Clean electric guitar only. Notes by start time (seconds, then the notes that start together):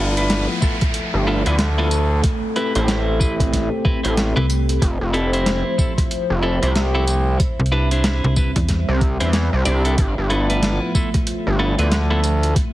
Already playing: B3 E4
0.00 F4 A4
0.17 B3 E4 F4 B4
0.62 B3 E4 F4 A4
1.27 B3 E4 F4 A4
1.46 B3 E4 F4 B4
1.78 B3 E4 F4 A4
2.56 C4 E4 G4 B4
2.75 C4 E4 G4 C5
3.20 C4 E4 G4 B4
3.85 C4 E4 G4 B4
4.03 C4 E4 G4 C5
4.36 C4 E4 G4 B4
5.13 C4 E4 G4 A4
5.33 C4 E4 G4 C5
5.78 C4 E4 G4 A4
6.43 C4 E4 G4 A4
6.62 C4 E4 G4 C5
6.95 C4 E4 G4 A4
7.72 D4 E4 G4 B4
7.91 D4 E4 G4 C5
8.37 D4 E4 G4 B4
9.20 D4 E4 G4 C5
9.65 D4 E4 G4 D5
9.84 D4 E4 G4 A4
10.30 B3 E4 F4 A4
10.49 B3 E4 F4 B4
10.95 B3 E4 F4 A4
11.59 B3 E4 F4 A4
11.78 B3 E4 F4 B4
12.10 B3 E4 F4 A4